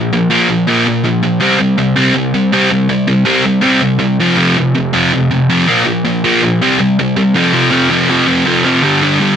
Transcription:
Already playing: F3
0.13 A#2 F3
0.30 A#2 F3 A#3
0.49 A#2 F3
0.67 A#2 F3 A#3
0.87 A#2 F3
1.04 A#2 F3
1.23 A#2 F3
1.40 C3 G3 C4
1.59 C3 G3
1.78 C3 G3
1.96 C3 G3 C4
2.14 C3 G3
2.34 C3 G3
2.53 C3 G3 C4
2.71 C3 G3
2.89 C3 G3
3.08 C3 G3
3.25 C3 G3 C4
3.45 C3 G3
3.61 C3 G3 C4
3.82 C3 G3
3.99 C3 G3
4.20 F2 C3 F3
4.37 F2 C3 F3
4.58 F2 C3
4.75 F2 C3
4.93 F2 C3 F3
5.14 F2 C3
5.31 F2 C3
5.50 F2 C3 F3
5.68 A#2 F3 A#3
5.86 A#2 F3
6.05 A#2 F3
6.24 A#2 F3 A#3
6.42 A#2 F3
6.62 C3 G3 C4
6.79 C3 G3
6.99 C3 G3
7.17 C3 G3
7.35 F2 C3 F3
7.54 F2 C3 F3
7.71 F2 C3 F3
7.90 F2 C3 F3
8.09 F2 C3 F3
8.27 F2 C3 F3
8.47 F2 C3 F3
8.65 F2 C3 F3
8.83 G2 D3 G3
9.03 G2 D3 G3
9.20 G2 D3 G3

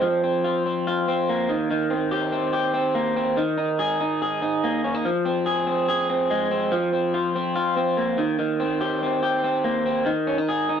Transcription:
Already playing: C4
0.02 F3
0.23 C4
0.44 F4
0.66 C4
0.87 F4
1.08 C4
1.29 A#3
1.49 D#3
1.71 D#3
1.90 C4
2.11 G4
2.32 C4
2.53 G4
2.74 C4
2.95 A#3
3.16 C4
3.37 D#3
3.58 D#4
3.79 G#4
4.00 D#4
4.22 G#4
4.42 D#4
4.64 A#3
4.84 C#4
4.95 D#4
5.05 F3
5.25 C4
5.46 G#4
5.67 C4
5.88 G#4
6.10 C4
6.30 G#3
6.51 C4
6.72 F3
6.93 C4
7.14 F4
7.36 C4
7.56 F4
7.77 C4
7.97 A#3
8.18 D#3
8.39 D#3
8.60 C4
8.81 G4
9.03 C4
9.23 G4
9.44 C4
9.64 A#3
9.86 C4
10.06 D#3
10.27 C#4
10.38 D#4
10.49 G#4
10.69 D#4

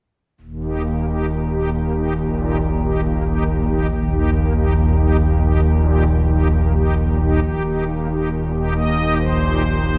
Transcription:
0.41 D#1 D#2
0.63 D#4 G4
0.85 A#3
1.08 D#4 G4
1.30 A#2
1.51 D#4 G4
1.73 A#3
1.95 D#4 G4
2.16 A#1 A#2
2.39 D#4 G4
2.61 A#2
2.82 D#4 G4
3.04 A#3
3.24 D#4 G4
3.46 A#2
3.67 D#4 G4
3.89 D#1 D#2
4.11 D#4 G4
4.33 A#3
4.55 D#4 G4
4.76 A#2
4.98 D#4 G4
5.19 A#3
5.42 D#4 G4
5.63 A#1 A#2
5.85 D#4 G4
6.06 A#2
6.28 D#4 G4
6.51 A#3
6.74 D#4 G4
6.97 A#2
7.20 D#4 G4
7.42 D#1 D#2 G4
7.64 D#4 G4
7.88 A#3
8.09 D#4 G4
8.31 A#2
8.54 D#4 G4
8.76 A#3 D#5
8.98 D#4 G4
9.19 A#1 A#2 C5
9.43 D#4 G4
9.66 A#2
9.88 D#4 G4

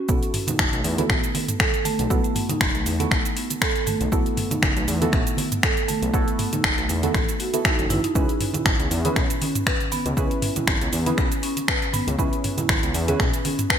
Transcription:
0.09 B1 B3 E4 F#4 A4, kick, shaker
0.23 closed hi-hat, shaker
0.34 mid tom, open hi-hat, muted conga, shaker
0.47 D#4, closed hi-hat, high conga, low conga, shaker
0.59 F#1, finger snap, kick, shaker
0.73 B1 A3, closed hi-hat, shaker
0.84 E2, open hi-hat, muted conga, shaker
0.98 B3 E4 F#4 A4, closed hi-hat, high conga, shaker
1.09 A1, finger snap, kick, muted conga, low conga, shaker
1.24 closed hi-hat, shaker
1.35 B3, open hi-hat, high conga, shaker
1.49 closed hi-hat, mid tom, muted conga, shaker
1.60 A4, finger snap, kick, shaker
1.73 closed hi-hat, muted conga, shaker
1.85 A3, open hi-hat, high conga, shaker
1.99 B1, closed hi-hat, muted conga, shaker
2.10 B1 B3 E4 F#4 A4, kick, shaker
2.24 closed hi-hat, shaker
2.35 mid tom, open hi-hat, muted conga, shaker
2.49 D#4, closed hi-hat, high conga, low conga, shaker
2.61 F#1, finger snap, kick, shaker
2.74 B1 A3, closed hi-hat, shaker
2.86 E2, open hi-hat, muted conga, shaker
3.00 B3 E4 F#4 A4, closed hi-hat, high conga, shaker
3.11 A1, finger snap, kick, shaker
3.25 closed hi-hat, shaker
3.36 B3, open hi-hat, shaker
3.50 closed hi-hat, muted conga, shaker
3.62 A4, finger snap, kick, shaker
3.76 closed hi-hat, muted conga, shaker
3.87 A3, mid tom, open hi-hat, high conga, shaker
4.00 B1, closed hi-hat, muted conga, shaker
4.12 B1 B3 E4 F#4 A4, kick, shaker
4.26 closed hi-hat, shaker
4.37 mid tom, open hi-hat, muted conga, shaker
4.51 D#4, closed hi-hat, high conga, low conga, shaker
4.62 F#1, finger snap, kick, muted conga, shaker
4.76 B1 A3, closed hi-hat, shaker
4.88 E2, open hi-hat, muted conga, shaker
5.01 B3 E4 F#4 A4, closed hi-hat, high conga, shaker
5.12 A1, finger snap, kick, muted conga, low conga, shaker
5.27 closed hi-hat, shaker
5.37 B3, open hi-hat, high conga, shaker
5.52 closed hi-hat, mid tom, muted conga, shaker
5.63 A4, finger snap, kick, shaker
5.77 closed hi-hat, muted conga, shaker
5.88 A3, open hi-hat, high conga, shaker
6.02 B1, closed hi-hat, muted conga, shaker
6.13 B1 B3 E4 F#4 A4, kick, shaker
6.28 closed hi-hat, shaker
6.39 mid tom, open hi-hat, muted conga, shaker
6.53 D#4, closed hi-hat, high conga, low conga, shaker
6.64 F#1, finger snap, kick, muted conga, shaker
6.78 B1 A3, closed hi-hat, shaker
6.89 E2, open hi-hat, muted conga, shaker
7.03 B3 E4 F#4 A4, closed hi-hat, high conga, shaker
7.14 A1, finger snap, kick, muted conga, shaker
7.29 closed hi-hat, shaker
7.40 F#4, open hi-hat, shaker
7.53 B3 E4 F#4 A4, closed hi-hat, muted conga, shaker
7.65 B3 D#4 E4 F#4 A4, finger snap, kick, shaker
7.78 F#1, closed hi-hat, muted conga, shaker
7.90 A1 E4, mid tom, open hi-hat, high conga, shaker
8.04 D#4, closed hi-hat, muted conga, shaker
8.15 C#2 C#4 E4 G#4 B4, kick, shaker
8.29 closed hi-hat, shaker
8.41 mid tom, open hi-hat, muted conga, shaker
8.54 E4, closed hi-hat, high conga, low conga, shaker
8.66 G#1, finger snap, kick, muted conga, shaker
8.79 C#2 B3, closed hi-hat, shaker
8.91 E2, open hi-hat, muted conga, shaker
9.05 C#4 E4 G#4 B4, closed hi-hat, high conga, shaker
9.16 B1, finger snap, kick, muted conga, low conga, shaker
9.30 closed hi-hat, shaker
9.42 C#4, open hi-hat, high conga, shaker
9.55 closed hi-hat, mid tom, muted conga, shaker
9.67 B4, finger snap, kick, shaker
9.80 closed hi-hat, muted conga, shaker
9.92 B3, open hi-hat, high conga, shaker
10.05 C#2, closed hi-hat, muted conga, shaker
10.17 C#2 C#4 E4 G#4 B4, kick, shaker
10.31 closed hi-hat, shaker
10.42 mid tom, open hi-hat, muted conga, shaker
10.56 E4, closed hi-hat, high conga, low conga, shaker
10.67 G#1, finger snap, kick, shaker
10.81 C#2 B3, closed hi-hat, shaker
10.92 E2, open hi-hat, muted conga, shaker
11.06 C#4 E4 G#4 B4, closed hi-hat, high conga, shaker
11.18 B1, finger snap, kick, muted conga, shaker
11.32 closed hi-hat, shaker
11.43 C#4, open hi-hat, shaker
11.57 closed hi-hat, muted conga, shaker
11.68 B4, finger snap, kick, shaker
11.82 closed hi-hat, muted conga, shaker
11.93 B3, mid tom, open hi-hat, high conga, shaker
12.07 C#2, closed hi-hat, muted conga, shaker
12.18 C#2 C#4 E4 G#4 B4, kick, shaker
12.33 closed hi-hat, shaker
12.44 mid tom, open hi-hat, muted conga, shaker
12.57 E4, closed hi-hat, high conga, low conga, shaker
12.68 G#1, finger snap, kick, muted conga, shaker
12.83 C#2 B3, closed hi-hat, shaker
12.94 E2, open hi-hat, muted conga, shaker
13.08 C#4 E4 G#4 B4, closed hi-hat, high conga, shaker
13.20 B1, finger snap, kick, muted conga, low conga, shaker
13.34 closed hi-hat, shaker
13.45 C#4, open hi-hat, high conga, shaker
13.58 closed hi-hat, mid tom, muted conga, shaker
13.70 B4, finger snap, kick, shaker

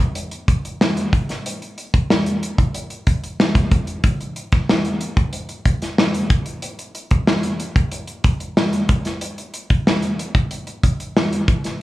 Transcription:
0.00 closed hi-hat
0.15 closed hi-hat
0.31 closed hi-hat
0.48 kick, closed hi-hat
0.65 closed hi-hat
0.81 snare
0.97 closed hi-hat
1.13 kick, closed hi-hat
1.29 snare, closed hi-hat
1.46 closed hi-hat
1.62 closed hi-hat
1.78 closed hi-hat
1.94 kick, closed hi-hat
2.10 snare
2.26 closed hi-hat
2.43 closed hi-hat
2.58 kick, closed hi-hat
2.74 closed hi-hat
2.90 closed hi-hat
3.07 kick, closed hi-hat
3.24 closed hi-hat
3.40 snare
3.55 kick, closed hi-hat
3.71 kick, closed hi-hat
3.87 closed hi-hat
4.04 kick, closed hi-hat
4.21 closed hi-hat
4.36 closed hi-hat
4.52 kick, snare, closed hi-hat
4.69 snare
4.85 closed hi-hat
5.01 closed hi-hat
5.17 kick, closed hi-hat
5.33 closed hi-hat
5.49 closed hi-hat
5.65 kick, closed hi-hat
5.82 snare, closed hi-hat
5.98 snare
6.14 closed hi-hat
6.30 kick, closed hi-hat
6.46 closed hi-hat
6.62 closed hi-hat
6.79 closed hi-hat
6.95 closed hi-hat
7.11 kick, closed hi-hat
7.27 snare
7.43 closed hi-hat
7.60 closed hi-hat
7.76 kick, closed hi-hat
7.92 closed hi-hat
8.07 closed hi-hat
8.24 kick, closed hi-hat
8.40 closed hi-hat
8.57 snare
8.73 closed hi-hat
8.89 kick, closed hi-hat
9.05 snare, closed hi-hat
9.21 closed hi-hat
9.38 closed hi-hat
9.54 closed hi-hat
9.70 kick, closed hi-hat
9.87 snare
10.02 closed hi-hat
10.19 closed hi-hat
10.35 kick, closed hi-hat
10.51 closed hi-hat
10.67 closed hi-hat
10.84 kick, closed hi-hat
11.00 closed hi-hat
11.17 snare
11.33 closed hi-hat
11.48 kick, closed hi-hat
11.64 snare, closed hi-hat

